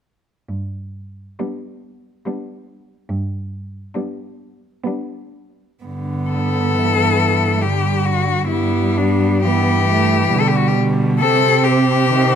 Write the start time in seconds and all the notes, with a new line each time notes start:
0.49 G2
1.39 G3 B3 D4
2.26 G3 B3 D4
3.09 G2
3.95 G3 B3 D4
4.84 G3 B3 D4
5.84 G2 D3 B3
6.29 A4
6.73 E3
7.61 D3 G3 G4
8.06 F#4
8.48 G2 G3 B3 E4
8.97 D4
9.44 E3 B3 G4
9.89 A3
10.32 B2 D3 G3
10.40 A4
10.48 G4
10.58 F#4
10.68 G4
10.77 D3
11.20 C3 C4 A4
11.63 G4
12.08 D#3 C4